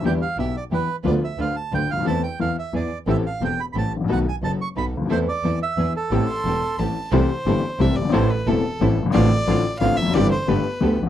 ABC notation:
X:1
M:3/4
L:1/16
Q:1/4=178
K:Am
V:1 name="Bandoneon"
g2 f2 e2 d2 B3 z | d2 e2 f2 a2 g2 f2 | a2 g2 f2 e2 d3 z | e2 f2 g2 b3/2 b/2 a2 z2 |
^f2 ^g2 a2 ^c'2 b2 z2 | c2 d4 e4 A2- | A8 z4 | [K:C] z12 |
z12 | z12 | z12 |]
V:2 name="Violin"
z12 | z12 | z12 | z12 |
z12 | z12 | z2 c'6 a4 | [K:C] c8 e2 d2 |
c2 B2 A6 z2 | d8 f2 e2 | d2 c2 B6 z2 |]
V:3 name="String section"
[DEG]2 z2 [DEG]2 z2 [DEG]2 z2 | [DFB]2 z2 [DFB]2 z2 [DFB]2 z2 | [CEA]2 z2 [CEA]2 z2 [B,E^G]2 z2 | [CGA]2 z2 [CGA]2 z2 [CGA]2 z2 |
[B,^DA]2 z2 [B,DA]2 z2 [B,DA]2 z2 | [CEA]2 z2 [CEA]2 z2 [DE^G]2 z2 | [CGA]2 z2 [CGA]2 z2 [CGA]2 z2 | [K:C] [CEA]2 z2 [CEA]2 z2 [CEA]2 z2 |
[CEA]2 z2 [CEA]2 z2 [CEA]2 z2 | [CDF]2 z2 [CDF]2 z2 [CDF]2 z2 | [CEG]2 z2 [B,GA]2 z2 [B,GA]2 z2 |]
V:4 name="Upright piano" clef=bass
[E,,D,E,G,B,E]2 z2 [B,,,B,,]2 z2 [E,,E,]2 z2 | [D,,D,F,B,F]2 z2 [D,,D,]2 z2 [D,,D,]2 z/2 ^C,,/2 D,,/2 ^D,,/2 | [E,,E,A,CA]2 z2 [E,,E,]2 z2 [E,,E,]2 z2 | [A,,,A,,E,A,CG]2 z2 [E,,,E,,]2 z2 [A,,,A,,]2 z/2 ^G,,,/2 A,,,/2 _B,,,/2 |
[B,,,B,,^D,A,B,^F]2 z2 [^F,,,^F,,]2 z2 [B,,,B,,]2 z/2 ^C,,/2 =D,,/2 ^D,,/2 | [E,,E,A,CA]2 z2 [E,,E,]2 z2 [E,,E,]2 z2 | [A,,,A,,E,A,CG]2 z2 [E,,,E,,]2 z2 [A,,,A,,]2 z2 | [K:C] [C,,C,E,A,CG]2 z2 [G,,,G,,E,A,CG]2 z2 [C,,C,E,A,CG]2 z/2 ^F,,,/2 G,,,/2 _A,,,/2 |
[A,,,A,,E,A,CA]2 z2 [E,,,E,,E,A,CA]2 z2 [A,,,A,,E,A,CA]2 z/2 ^F,,,/2 G,,,/2 _A,,,/2 | [A,,,A,,D,A,CF]2 z2 [A,,,A,,D,A,CF]2 z2 [A,,,A,,D,A,CF]2 z/2 E,,/2 F,,/2 ^F,,/2 | [G,,,G,,E,G,CG]2 z2 [G,,,G,,D,A,B,G]2 z2 [D,,D,A,B,G]2 z/2 A,,,/2 z |]
V:5 name="Double bass" clef=bass
E,,2 z2 B,,,2 z2 E,,2 z2 | D,,2 z2 D,,2 z2 D,,2 D,,2 | E,,2 z2 E,,2 z2 E,,2 z2 | A,,,2 z2 E,,,2 z2 A,,,2 A,,,2 |
B,,,2 z2 ^F,,,2 z2 B,,,2 D,,2 | E,,2 z2 E,,2 z2 E,,2 z2 | A,,,2 z2 E,,,2 z2 A,,,2 z2 | [K:C] C,,2 z2 G,,,2 z2 C,,2 G,,,2 |
A,,,2 z2 E,,,2 z2 A,,,2 G,,,2 | A,,,2 z2 A,,,2 z2 A,,,2 F,,,2 | G,,,2 z2 G,,,2 z2 D,,2 _B,,,2 |]